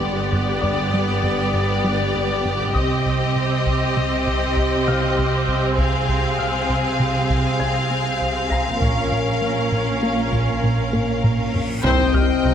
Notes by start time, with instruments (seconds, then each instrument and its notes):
Already playing: double bass section G1, cello section G2, viola section B3, violin section G4 D5, felt piano C6 G#6
0.02 analog synth bass G2
0.33 analog synth bass G2
0.61 analog synth bass G2, felt piano D5 D6, taiko
0.94 analog synth bass G3
1.24 analog synth bass G2
1.54 analog synth bass G2
1.84 analog synth bass G3
2.15 analog synth bass G2
2.45 analog synth bass G2
2.74 double bass section C2, analog synth bass C2, cello section C3, viola section C4, violin section D#5, felt piano D#6
3.06 analog synth bass C2
3.36 analog synth bass C2
3.66 analog synth bass C2
3.97 analog synth bass C3
4.27 analog synth bass C2
4.57 analog synth bass C2
4.87 analog synth bass C3, felt piano F5 F6
5.19 analog synth bass C2
5.48 analog synth bass C2
5.78 analog synth bass C2, violin section G#4 F5, taiko
6.09 analog synth bass C2
6.38 analog synth bass C2, felt piano F5 F6
6.69 analog synth bass C2
7.00 analog synth bass C3
7.30 analog synth bass C2
7.59 analog synth bass C2, felt piano G#5 G#6
7.91 analog synth bass C3
8.21 analog synth bass C2
8.50 analog synth bass C2, felt piano A#5 A#6
8.81 double bass section A#1, cello section A#2, analog synth bass A#2, viola section C#4, violin section A#4, taiko, reverse cymbal
9.12 analog synth bass A#2
9.42 analog synth bass A#2
9.72 analog synth bass A#2
10.03 analog synth bass A#3
10.33 analog synth bass A#2, taiko
10.64 analog synth bass A#2
10.93 analog synth bass A#3, taiko low-mid
11.24 analog synth bass A#2, taiko low-mid
11.54 analog synth bass A#2, taiko low
11.83 double bass section C2, detuned saw bass C2, analog synth bass C2, tuba C2, cello section C3, trombone section D#3 C4, french horn section C4, viola section C5, violin section D#5 G5, taiko, impact
12.14 double bass section C2, analog synth bass C2, tuba C2, cello section C3, viola section G4, felt piano F6
12.43 double bass section C2, analog synth bass C2, tuba C2, cello section C3, viola section D#4